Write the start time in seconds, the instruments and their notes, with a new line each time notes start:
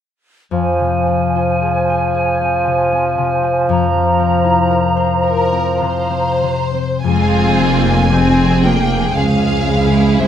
0.51 harp F2, bassoon F3, clarinet C5, flute section G#5
0.79 harp C3
1.07 harp C4
1.36 harp F4
1.62 harp G#4
1.89 harp C5
2.15 harp G#4
2.41 harp C4
2.67 harp C3
2.92 harp C4
3.18 harp C3
3.43 harp C4
3.69 harp F2, flute section A#5
3.94 harp C3
4.20 harp C4
4.45 harp E4
4.71 harp A#4
4.97 harp C5
5.23 harp A#4, violin section A#4
5.52 harp C4
5.81 harp C3, violin section C5
6.10 harp C4
6.43 harp C3
6.74 harp C4
7.04 double bass section F1, harp F2, cello section F2, viola section G#3 C4, violin section F4 G#4 G#5
7.61 harp C3, viola section A#3
8.12 viola section C4, harp C4, violin section G#4
8.64 viola section A#3, harp F4, violin section G5
9.14 cello section C#2, double bass section C#2, viola section G#3, violin section G#4 F5, harp C5
9.67 harp C4, violin section E4
10.19 double bass section C2, cello section C2, harp C3, viola section E4, violin section C5 E5